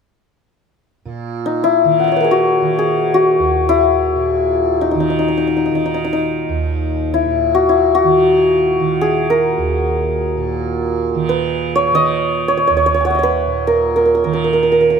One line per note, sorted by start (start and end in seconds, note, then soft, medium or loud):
1.05 4.16 A#2 medium
1.46 1.70 D#4 medium
1.64 3.68 E4 medium
1.84 2.62 D#3 soft
2.00 4.13 F#5 soft
2.04 3.75 D#5 soft
2.04 4.33 E5 soft
2.12 4.65 C#5 soft
2.16 4.88 B4 soft
2.20 2.78 G#4 soft
2.20 5.03 A#4 soft
2.31 3.14 F#4 medium
2.62 4.95 D#3 soft
2.79 5.82 G#4 medium
3.14 6.37 F#4 medium
3.39 6.48 D#2 soft
3.69 4.87 E4 medium
4.16 7.25 A#2 soft
4.81 4.91 D#4 medium
4.91 5.71 D#3 medium
4.91 5.00 D#4 soft
5.00 5.10 D#4 soft
5.10 5.18 D#4 soft
5.19 5.28 D#4 soft
5.28 5.37 D#4 soft
5.37 5.47 D#4 soft
5.47 5.56 D#4 soft
5.57 5.65 D#4 soft
5.66 5.75 D#4 soft
5.71 8.04 D#3 soft
5.75 5.85 D#4 soft
5.86 5.94 D#4 soft
5.94 6.04 D#4 soft
6.04 6.12 D#4 soft
6.13 7.20 D#4 soft
6.49 9.58 D#2 medium
7.14 7.69 E4 medium
7.25 10.37 A#2 soft
7.55 7.94 F#4 medium
7.69 11.16 E4 medium
7.95 11.18 F#4 medium
8.04 8.80 D#3 soft
8.80 11.14 D#3 soft
9.01 12.05 G#4 medium
9.30 11.35 A#4 medium
9.58 12.69 D#2 soft
10.37 13.46 A#2 soft
11.14 11.92 D#3 soft
11.29 13.23 B4 medium
11.76 12.48 C#5 medium
11.92 14.24 D#3 medium
11.92 13.14 D#5 medium
12.48 12.57 C#5 medium
12.57 12.67 C#5 soft
12.67 15.00 D#2 soft
12.67 12.76 C#5 medium
12.77 12.86 C#5 medium
12.86 12.94 C#5 medium
12.94 13.04 C#5 medium
13.00 15.00 G#5 soft
13.05 13.18 C#5 medium
13.05 15.00 F#5 soft
13.10 15.00 E5 soft
13.15 15.00 C#5 soft
13.15 15.00 D#5 soft
13.23 13.73 B4 medium
13.47 15.00 A#2 soft
13.67 13.96 A#4 medium
13.96 14.05 A#4 medium
14.06 14.14 A#4 soft
14.15 14.24 A#4 soft
14.24 15.00 D#3 medium
14.24 14.33 A#4 soft
14.33 14.44 A#4 soft
14.44 14.53 A#4 soft
14.53 14.62 A#4 soft
14.63 14.71 A#4 soft
14.72 14.80 A#4 soft
14.81 14.90 A#4 soft
14.90 14.99 A#4 soft